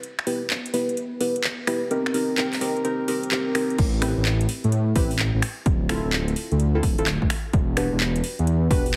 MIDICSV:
0, 0, Header, 1, 4, 480
1, 0, Start_track
1, 0, Key_signature, 0, "minor"
1, 0, Tempo, 468750
1, 35, Time_signature, 4, 2, 24, 8
1, 9177, End_track
2, 0, Start_track
2, 0, Title_t, "Synth stab"
2, 0, Program_c, 0, 62
2, 274, Note_on_c, 0, 59, 85
2, 274, Note_on_c, 0, 64, 76
2, 274, Note_on_c, 0, 67, 81
2, 274, Note_on_c, 0, 71, 92
2, 501, Note_off_c, 0, 59, 0
2, 501, Note_off_c, 0, 64, 0
2, 501, Note_off_c, 0, 67, 0
2, 501, Note_off_c, 0, 71, 0
2, 754, Note_on_c, 0, 59, 86
2, 754, Note_on_c, 0, 64, 77
2, 754, Note_on_c, 0, 67, 77
2, 754, Note_on_c, 0, 71, 95
2, 981, Note_off_c, 0, 64, 0
2, 982, Note_off_c, 0, 59, 0
2, 982, Note_off_c, 0, 67, 0
2, 982, Note_off_c, 0, 71, 0
2, 1234, Note_on_c, 0, 59, 84
2, 1234, Note_on_c, 0, 64, 73
2, 1234, Note_on_c, 0, 67, 77
2, 1234, Note_on_c, 0, 71, 93
2, 1461, Note_off_c, 0, 59, 0
2, 1461, Note_off_c, 0, 64, 0
2, 1461, Note_off_c, 0, 67, 0
2, 1461, Note_off_c, 0, 71, 0
2, 1713, Note_on_c, 0, 59, 86
2, 1714, Note_on_c, 0, 64, 78
2, 1714, Note_on_c, 0, 67, 74
2, 1714, Note_on_c, 0, 71, 92
2, 1941, Note_off_c, 0, 59, 0
2, 1941, Note_off_c, 0, 64, 0
2, 1941, Note_off_c, 0, 67, 0
2, 1941, Note_off_c, 0, 71, 0
2, 1954, Note_on_c, 0, 60, 87
2, 1954, Note_on_c, 0, 63, 75
2, 1954, Note_on_c, 0, 67, 76
2, 1954, Note_on_c, 0, 70, 92
2, 2181, Note_off_c, 0, 60, 0
2, 2181, Note_off_c, 0, 63, 0
2, 2181, Note_off_c, 0, 67, 0
2, 2181, Note_off_c, 0, 70, 0
2, 2194, Note_on_c, 0, 60, 86
2, 2194, Note_on_c, 0, 63, 83
2, 2194, Note_on_c, 0, 67, 81
2, 2194, Note_on_c, 0, 70, 96
2, 2421, Note_off_c, 0, 60, 0
2, 2421, Note_off_c, 0, 63, 0
2, 2421, Note_off_c, 0, 67, 0
2, 2421, Note_off_c, 0, 70, 0
2, 2433, Note_on_c, 0, 60, 86
2, 2434, Note_on_c, 0, 63, 78
2, 2434, Note_on_c, 0, 67, 83
2, 2434, Note_on_c, 0, 70, 94
2, 2661, Note_off_c, 0, 60, 0
2, 2661, Note_off_c, 0, 63, 0
2, 2661, Note_off_c, 0, 67, 0
2, 2661, Note_off_c, 0, 70, 0
2, 2673, Note_on_c, 0, 60, 88
2, 2673, Note_on_c, 0, 63, 76
2, 2673, Note_on_c, 0, 67, 80
2, 2673, Note_on_c, 0, 70, 96
2, 2901, Note_off_c, 0, 60, 0
2, 2901, Note_off_c, 0, 63, 0
2, 2901, Note_off_c, 0, 67, 0
2, 2901, Note_off_c, 0, 70, 0
2, 2914, Note_on_c, 0, 60, 86
2, 2914, Note_on_c, 0, 63, 77
2, 2914, Note_on_c, 0, 67, 77
2, 2914, Note_on_c, 0, 70, 100
2, 3141, Note_off_c, 0, 60, 0
2, 3141, Note_off_c, 0, 63, 0
2, 3141, Note_off_c, 0, 67, 0
2, 3141, Note_off_c, 0, 70, 0
2, 3154, Note_on_c, 0, 60, 83
2, 3154, Note_on_c, 0, 63, 83
2, 3154, Note_on_c, 0, 67, 78
2, 3154, Note_on_c, 0, 70, 98
2, 3381, Note_off_c, 0, 60, 0
2, 3381, Note_off_c, 0, 63, 0
2, 3381, Note_off_c, 0, 67, 0
2, 3381, Note_off_c, 0, 70, 0
2, 3395, Note_on_c, 0, 60, 85
2, 3395, Note_on_c, 0, 63, 77
2, 3395, Note_on_c, 0, 67, 78
2, 3395, Note_on_c, 0, 70, 95
2, 3622, Note_off_c, 0, 60, 0
2, 3622, Note_off_c, 0, 63, 0
2, 3622, Note_off_c, 0, 67, 0
2, 3622, Note_off_c, 0, 70, 0
2, 3634, Note_on_c, 0, 63, 80
2, 3634, Note_on_c, 0, 67, 79
2, 3635, Note_on_c, 0, 60, 89
2, 3635, Note_on_c, 0, 70, 98
2, 3861, Note_off_c, 0, 63, 0
2, 3862, Note_off_c, 0, 60, 0
2, 3862, Note_off_c, 0, 67, 0
2, 3862, Note_off_c, 0, 70, 0
2, 4115, Note_on_c, 0, 60, 86
2, 4115, Note_on_c, 0, 64, 82
2, 4115, Note_on_c, 0, 67, 76
2, 4115, Note_on_c, 0, 71, 94
2, 5055, Note_off_c, 0, 60, 0
2, 5055, Note_off_c, 0, 64, 0
2, 5055, Note_off_c, 0, 67, 0
2, 5055, Note_off_c, 0, 71, 0
2, 5075, Note_on_c, 0, 60, 91
2, 5075, Note_on_c, 0, 64, 85
2, 5075, Note_on_c, 0, 67, 87
2, 5075, Note_on_c, 0, 71, 102
2, 5233, Note_off_c, 0, 60, 0
2, 5233, Note_off_c, 0, 64, 0
2, 5233, Note_off_c, 0, 67, 0
2, 5233, Note_off_c, 0, 71, 0
2, 6034, Note_on_c, 0, 64, 89
2, 6034, Note_on_c, 0, 65, 87
2, 6034, Note_on_c, 0, 69, 102
2, 6035, Note_on_c, 0, 60, 98
2, 6874, Note_off_c, 0, 60, 0
2, 6874, Note_off_c, 0, 64, 0
2, 6874, Note_off_c, 0, 65, 0
2, 6874, Note_off_c, 0, 69, 0
2, 6912, Note_on_c, 0, 60, 85
2, 6912, Note_on_c, 0, 64, 76
2, 6912, Note_on_c, 0, 65, 77
2, 6913, Note_on_c, 0, 69, 94
2, 6997, Note_off_c, 0, 60, 0
2, 6997, Note_off_c, 0, 64, 0
2, 6997, Note_off_c, 0, 65, 0
2, 6997, Note_off_c, 0, 69, 0
2, 7153, Note_on_c, 0, 64, 79
2, 7153, Note_on_c, 0, 69, 95
2, 7154, Note_on_c, 0, 60, 85
2, 7154, Note_on_c, 0, 65, 77
2, 7238, Note_off_c, 0, 60, 0
2, 7238, Note_off_c, 0, 64, 0
2, 7238, Note_off_c, 0, 65, 0
2, 7238, Note_off_c, 0, 69, 0
2, 7955, Note_on_c, 0, 66, 80
2, 7955, Note_on_c, 0, 67, 79
2, 7956, Note_on_c, 0, 62, 91
2, 7956, Note_on_c, 0, 71, 99
2, 8895, Note_off_c, 0, 62, 0
2, 8895, Note_off_c, 0, 66, 0
2, 8895, Note_off_c, 0, 67, 0
2, 8896, Note_off_c, 0, 71, 0
2, 8914, Note_on_c, 0, 62, 96
2, 8914, Note_on_c, 0, 66, 86
2, 8914, Note_on_c, 0, 71, 108
2, 8915, Note_on_c, 0, 67, 86
2, 9073, Note_off_c, 0, 62, 0
2, 9073, Note_off_c, 0, 66, 0
2, 9073, Note_off_c, 0, 67, 0
2, 9073, Note_off_c, 0, 71, 0
2, 9177, End_track
3, 0, Start_track
3, 0, Title_t, "Detuned saw bass"
3, 0, Program_c, 1, 39
3, 3875, Note_on_c, 1, 33, 96
3, 4231, Note_off_c, 1, 33, 0
3, 4272, Note_on_c, 1, 33, 102
3, 4573, Note_off_c, 1, 33, 0
3, 4753, Note_on_c, 1, 45, 96
3, 5053, Note_off_c, 1, 45, 0
3, 5075, Note_on_c, 1, 33, 92
3, 5430, Note_off_c, 1, 33, 0
3, 5472, Note_on_c, 1, 33, 95
3, 5541, Note_off_c, 1, 33, 0
3, 5795, Note_on_c, 1, 26, 98
3, 6150, Note_off_c, 1, 26, 0
3, 6191, Note_on_c, 1, 26, 98
3, 6493, Note_off_c, 1, 26, 0
3, 6672, Note_on_c, 1, 38, 96
3, 6973, Note_off_c, 1, 38, 0
3, 6994, Note_on_c, 1, 26, 99
3, 7350, Note_off_c, 1, 26, 0
3, 7392, Note_on_c, 1, 26, 100
3, 7461, Note_off_c, 1, 26, 0
3, 7715, Note_on_c, 1, 28, 99
3, 8070, Note_off_c, 1, 28, 0
3, 8113, Note_on_c, 1, 28, 101
3, 8413, Note_off_c, 1, 28, 0
3, 8592, Note_on_c, 1, 40, 101
3, 8893, Note_off_c, 1, 40, 0
3, 8914, Note_on_c, 1, 28, 97
3, 9177, Note_off_c, 1, 28, 0
3, 9177, End_track
4, 0, Start_track
4, 0, Title_t, "Drums"
4, 35, Note_on_c, 9, 42, 68
4, 137, Note_off_c, 9, 42, 0
4, 192, Note_on_c, 9, 26, 51
4, 275, Note_on_c, 9, 46, 114
4, 294, Note_off_c, 9, 26, 0
4, 377, Note_off_c, 9, 46, 0
4, 515, Note_on_c, 9, 39, 116
4, 515, Note_on_c, 9, 42, 73
4, 617, Note_off_c, 9, 39, 0
4, 617, Note_off_c, 9, 42, 0
4, 673, Note_on_c, 9, 42, 73
4, 755, Note_on_c, 9, 46, 116
4, 775, Note_off_c, 9, 42, 0
4, 857, Note_off_c, 9, 46, 0
4, 913, Note_on_c, 9, 42, 39
4, 995, Note_off_c, 9, 42, 0
4, 995, Note_on_c, 9, 42, 71
4, 1098, Note_off_c, 9, 42, 0
4, 1235, Note_on_c, 9, 46, 106
4, 1337, Note_off_c, 9, 46, 0
4, 1392, Note_on_c, 9, 42, 67
4, 1474, Note_off_c, 9, 42, 0
4, 1474, Note_on_c, 9, 39, 116
4, 1474, Note_on_c, 9, 42, 69
4, 1576, Note_off_c, 9, 39, 0
4, 1576, Note_off_c, 9, 42, 0
4, 1714, Note_on_c, 9, 26, 58
4, 1714, Note_on_c, 9, 46, 109
4, 1816, Note_off_c, 9, 26, 0
4, 1816, Note_off_c, 9, 46, 0
4, 1954, Note_on_c, 9, 42, 69
4, 2056, Note_off_c, 9, 42, 0
4, 2111, Note_on_c, 9, 26, 53
4, 2194, Note_on_c, 9, 46, 113
4, 2214, Note_off_c, 9, 26, 0
4, 2296, Note_off_c, 9, 46, 0
4, 2435, Note_on_c, 9, 26, 33
4, 2435, Note_on_c, 9, 39, 116
4, 2435, Note_on_c, 9, 42, 73
4, 2537, Note_off_c, 9, 26, 0
4, 2537, Note_off_c, 9, 39, 0
4, 2537, Note_off_c, 9, 42, 0
4, 2592, Note_on_c, 9, 39, 59
4, 2592, Note_on_c, 9, 46, 68
4, 2675, Note_off_c, 9, 46, 0
4, 2675, Note_on_c, 9, 46, 116
4, 2695, Note_off_c, 9, 39, 0
4, 2777, Note_off_c, 9, 46, 0
4, 2833, Note_on_c, 9, 42, 39
4, 2915, Note_off_c, 9, 42, 0
4, 2915, Note_on_c, 9, 42, 68
4, 3017, Note_off_c, 9, 42, 0
4, 3154, Note_on_c, 9, 46, 108
4, 3257, Note_off_c, 9, 46, 0
4, 3312, Note_on_c, 9, 42, 69
4, 3394, Note_off_c, 9, 42, 0
4, 3394, Note_on_c, 9, 39, 122
4, 3394, Note_on_c, 9, 42, 68
4, 3497, Note_off_c, 9, 39, 0
4, 3497, Note_off_c, 9, 42, 0
4, 3635, Note_on_c, 9, 26, 61
4, 3635, Note_on_c, 9, 46, 109
4, 3737, Note_off_c, 9, 26, 0
4, 3737, Note_off_c, 9, 46, 0
4, 3793, Note_on_c, 9, 42, 39
4, 3875, Note_on_c, 9, 36, 121
4, 3876, Note_off_c, 9, 42, 0
4, 3876, Note_on_c, 9, 42, 65
4, 3876, Note_on_c, 9, 49, 106
4, 3978, Note_off_c, 9, 36, 0
4, 3978, Note_off_c, 9, 42, 0
4, 3978, Note_off_c, 9, 49, 0
4, 4115, Note_on_c, 9, 26, 70
4, 4115, Note_on_c, 9, 46, 120
4, 4217, Note_off_c, 9, 26, 0
4, 4217, Note_off_c, 9, 46, 0
4, 4355, Note_on_c, 9, 39, 118
4, 4355, Note_on_c, 9, 42, 67
4, 4457, Note_off_c, 9, 39, 0
4, 4457, Note_off_c, 9, 42, 0
4, 4513, Note_on_c, 9, 42, 64
4, 4596, Note_on_c, 9, 46, 117
4, 4615, Note_off_c, 9, 42, 0
4, 4698, Note_off_c, 9, 46, 0
4, 4753, Note_on_c, 9, 42, 37
4, 4835, Note_off_c, 9, 42, 0
4, 4835, Note_on_c, 9, 42, 68
4, 4937, Note_off_c, 9, 42, 0
4, 5074, Note_on_c, 9, 46, 108
4, 5075, Note_on_c, 9, 36, 109
4, 5177, Note_off_c, 9, 46, 0
4, 5178, Note_off_c, 9, 36, 0
4, 5232, Note_on_c, 9, 46, 65
4, 5315, Note_on_c, 9, 39, 117
4, 5315, Note_on_c, 9, 42, 70
4, 5334, Note_off_c, 9, 46, 0
4, 5418, Note_off_c, 9, 39, 0
4, 5418, Note_off_c, 9, 42, 0
4, 5554, Note_on_c, 9, 26, 69
4, 5554, Note_on_c, 9, 46, 117
4, 5657, Note_off_c, 9, 26, 0
4, 5657, Note_off_c, 9, 46, 0
4, 5794, Note_on_c, 9, 42, 61
4, 5795, Note_on_c, 9, 36, 122
4, 5897, Note_off_c, 9, 36, 0
4, 5897, Note_off_c, 9, 42, 0
4, 6035, Note_on_c, 9, 26, 76
4, 6035, Note_on_c, 9, 46, 108
4, 6137, Note_off_c, 9, 26, 0
4, 6137, Note_off_c, 9, 46, 0
4, 6275, Note_on_c, 9, 39, 127
4, 6275, Note_on_c, 9, 42, 66
4, 6377, Note_off_c, 9, 39, 0
4, 6377, Note_off_c, 9, 42, 0
4, 6432, Note_on_c, 9, 42, 65
4, 6515, Note_on_c, 9, 46, 111
4, 6534, Note_off_c, 9, 42, 0
4, 6617, Note_off_c, 9, 46, 0
4, 6672, Note_on_c, 9, 42, 37
4, 6754, Note_off_c, 9, 42, 0
4, 6754, Note_on_c, 9, 42, 66
4, 6857, Note_off_c, 9, 42, 0
4, 6995, Note_on_c, 9, 36, 106
4, 6995, Note_on_c, 9, 46, 105
4, 7097, Note_off_c, 9, 36, 0
4, 7097, Note_off_c, 9, 46, 0
4, 7152, Note_on_c, 9, 42, 63
4, 7235, Note_off_c, 9, 42, 0
4, 7235, Note_on_c, 9, 26, 72
4, 7235, Note_on_c, 9, 39, 126
4, 7235, Note_on_c, 9, 42, 67
4, 7338, Note_off_c, 9, 26, 0
4, 7338, Note_off_c, 9, 39, 0
4, 7338, Note_off_c, 9, 42, 0
4, 7392, Note_on_c, 9, 36, 69
4, 7476, Note_on_c, 9, 26, 72
4, 7476, Note_on_c, 9, 46, 110
4, 7495, Note_off_c, 9, 36, 0
4, 7578, Note_off_c, 9, 26, 0
4, 7578, Note_off_c, 9, 46, 0
4, 7715, Note_on_c, 9, 36, 123
4, 7715, Note_on_c, 9, 42, 62
4, 7817, Note_off_c, 9, 42, 0
4, 7818, Note_off_c, 9, 36, 0
4, 7955, Note_on_c, 9, 26, 75
4, 7955, Note_on_c, 9, 46, 110
4, 8057, Note_off_c, 9, 26, 0
4, 8057, Note_off_c, 9, 46, 0
4, 8195, Note_on_c, 9, 39, 127
4, 8195, Note_on_c, 9, 42, 65
4, 8297, Note_off_c, 9, 39, 0
4, 8297, Note_off_c, 9, 42, 0
4, 8352, Note_on_c, 9, 42, 63
4, 8435, Note_on_c, 9, 46, 109
4, 8455, Note_off_c, 9, 42, 0
4, 8537, Note_off_c, 9, 46, 0
4, 8593, Note_on_c, 9, 42, 35
4, 8675, Note_off_c, 9, 42, 0
4, 8675, Note_on_c, 9, 42, 65
4, 8778, Note_off_c, 9, 42, 0
4, 8915, Note_on_c, 9, 36, 116
4, 8916, Note_on_c, 9, 46, 99
4, 9017, Note_off_c, 9, 36, 0
4, 9018, Note_off_c, 9, 46, 0
4, 9073, Note_on_c, 9, 46, 57
4, 9175, Note_off_c, 9, 46, 0
4, 9177, End_track
0, 0, End_of_file